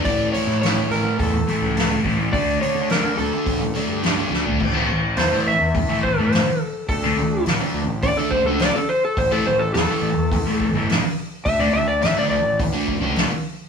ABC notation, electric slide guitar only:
X:1
M:4/4
L:1/16
Q:1/4=105
K:A
V:1 name="Electric slide guitar"
d2 c2 c2 _B2 A6 z2 | d2 c2 _B2 A6 z4 | z4 =c2 e4 c A c2 A2 | A4 z4 d A =c A d A c A |
=c A c A A8 z4 | e d e d e d d2 z8 |]